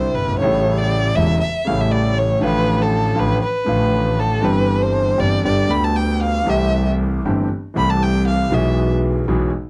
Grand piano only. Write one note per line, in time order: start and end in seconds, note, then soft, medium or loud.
0.00 0.37 C2 medium
0.00 0.37 C3 medium
0.00 0.36 D3 medium
0.00 0.36 G3 medium
0.00 0.37 C4 medium
0.00 0.38 E4 medium
0.23 0.29 F#1 soft
0.29 0.35 G1 medium
0.36 0.42 G#1 medium
0.36 1.12 C#3 medium
0.42 1.13 A1 medium
0.42 1.13 A2 medium
0.42 1.13 G3 medium
0.42 1.13 A3 medium
0.42 1.14 E4 medium
1.16 1.38 E1 medium
1.16 1.38 E2 medium
1.16 1.38 C#3 medium
1.16 1.37 G3 medium
1.16 1.38 A3 medium
1.16 1.38 E4 medium
1.65 2.38 A1 medium
1.65 2.38 A2 medium
1.65 2.37 C#3 medium
1.65 2.38 G3 medium
1.65 2.38 A3 medium
1.65 2.39 E4 medium
2.40 3.13 A1 medium
2.40 3.13 A2 medium
2.40 3.12 D3 medium
2.40 3.12 F3 medium
2.40 3.13 A3 medium
2.40 3.14 F4 medium
3.15 3.37 A1 medium
3.15 3.37 A2 medium
3.15 3.37 D3 medium
3.15 3.37 F3 medium
3.15 3.37 A3 medium
3.15 3.37 F4 medium
3.65 4.39 A1 medium
3.65 4.39 A2 medium
3.65 4.38 D3 medium
3.65 4.38 F3 medium
3.65 4.39 A3 medium
3.69 4.40 F4 medium
4.40 5.15 G1 medium
4.40 5.15 G2 medium
4.40 5.14 E3 medium
4.40 5.15 G3 medium
4.40 5.15 C4 medium
4.45 5.16 G4 medium
5.18 5.40 G1 medium
5.18 5.40 G2 medium
5.18 5.40 E3 medium
5.18 5.40 G3 medium
5.18 5.40 C4 medium
5.18 5.40 G4 medium
5.44 5.66 G1 medium
5.44 5.66 G2 medium
5.44 5.65 D3 medium
5.44 5.66 G3 medium
5.44 5.66 B3 medium
5.44 5.66 G4 medium
5.68 6.43 D2 medium
5.68 6.43 D3 medium
5.68 6.43 G3 medium
5.68 6.43 B3 medium
5.68 6.44 G4 medium
6.44 7.21 C2 medium
6.44 7.21 C3 medium
6.44 7.20 E3 medium
6.44 7.21 A3 medium
6.44 7.21 C4 medium
6.48 7.22 G4 medium
7.25 7.47 G1 medium
7.25 7.47 G2 medium
7.25 7.47 E3 medium
7.25 7.47 A3 medium
7.25 7.47 C4 medium
7.25 7.47 G4 medium
7.74 8.49 C2 medium
7.74 8.49 C3 medium
7.74 8.48 E3 medium
7.74 8.49 A3 medium
7.74 8.49 C4 medium
7.74 8.50 G4 medium
8.50 9.24 B1 medium
8.50 9.24 B2 medium
8.50 9.23 E3 medium
8.50 9.23 G#3 medium
8.50 9.24 B3 medium
8.54 9.25 G#4 medium
9.28 9.50 B1 medium
9.28 9.49 B2 medium
9.28 9.49 E3 medium
9.28 9.49 G#3 medium
9.28 9.49 B3 medium
9.28 9.49 G#4 medium